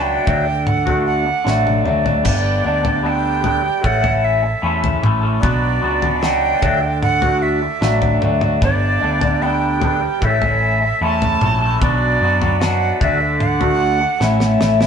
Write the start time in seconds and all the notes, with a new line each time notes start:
Already playing: C#2 B2 F#3 B3 D4 F#4 B4 D5 B5
0.01 G5
0.25 D2 D3 F#3 A3 D4 F#4 A4 A5, kick, floor tom
0.47 muted clean electric guitar stroke
0.67 F#5, mid tom
0.86 A3 D4 F#4, floor tom
1.06 F#5
1.26 muted clean electric guitar stroke
1.44 A1 D3 F#3 A3 D4 F#4, snare
1.67 high tom
1.84 D2 F#3 A3 D4 F#4, mid tom
2.04 A3 D4 F#4, floor tom
2.23 G1 G3 B3 D4 A4 B4 D5 G5, kick, floor tom, splash
2.64 D2 G3 B3 D4 A4
2.83 B3 D4 A4, floor tom
3.03 G3 B3 D4 A4 G5
3.42 G3 B3 D4 A4, floor tom
3.63 muted clean electric guitar stroke
3.82 A1 A2 E3 A3 C#4 A4 C#5 E5, kick
3.86 F#5
4.02 A3 C#4 A4, floor tom
4.24 E5
4.43 muted clean electric guitar stroke
4.62 E2 A2 E3 A3 C#4 A4
4.84 floor tom
5.03 A1 E3 A3 C#4 A4, mid tom
5.22 A3 C#4 A4
5.40 B1 B2 F#3 B3 D4 B4 D5 B5, kick, floor tom
5.44 F#4
5.81 C#2 F#3 B3 D4 F#4
6.02 B3 D4 F#4, floor tom
6.22 B2 F#3 B3 D4 F#4 G5, snare
6.61 D2 D3 F#3 A3 D4 F#4 A4 A5, kick, floor tom
6.82 muted clean electric guitar stroke
7.02 F#5, mid tom
7.22 A3 D4 F#4, floor tom
7.42 E5
7.62 muted clean electric guitar stroke
7.81 A1 D3 F#3 A3 D4 F#4, snare
8.02 floor tom
8.21 D2 F#3 A3 D4 F#4, mid tom
8.41 A3 D4 F#4, mid tom
8.61 G1 G3 B3 D4 A4 B4 D5 G5, kick, floor tom
9.00 D2 G3 B3 D4 A4
9.21 B3 D4 A4, floor tom
9.41 G3 B3 D4 A4 G5
9.81 G3 B3 D4 A4, floor tom
10.02 muted clean electric guitar stroke
10.20 A1 A2 E3 A3 A4 C#5 E5 A5, kick
10.24 C#4 A4
10.42 A3 C#4 A4, floor tom
10.82 muted clean electric guitar stroke
11.01 E2 A2 E3 A3 C#4 A4 A5
11.22 floor tom
11.41 A#1 E3 A3 C#4 A4, mid tom
11.61 A3 C#4 A4
11.80 B1 B2 F#3 B3 D4 B4 D5 F#5 B5, kick, floor tom
11.84 F#4
12.21 F#2 F#3 B3 D4 F#4
12.41 B3 D4 F#4, floor tom
12.60 B2 F#3 B3 D4 F#4 F#5, snare
13.00 D2 D3 A3 D4 F#4 A4 E5 A5, kick, floor tom
13.21 muted clean electric guitar stroke
13.40 F#5, mid tom
13.60 A3 D4 F#4, floor tom
14.01 muted clean electric guitar stroke
14.20 A1 A2 E3 A3 C#4 E4 C#5 E5, snare
14.40 snare
14.60 A1 E3 A3 C#4 E4, snare
14.80 A3 C#4 E4, snare